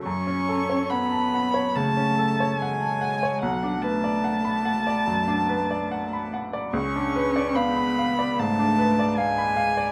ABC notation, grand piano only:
X:1
M:4/4
L:1/16
Q:1/4=73
K:F#m
V:1 name="Grand piano"
F,, C A c f a f c C, C A c f a f c | B,,, D B d f b f d F,, D B d f b f d | C,, D B d ^e b e d G,, D B d e b e d |]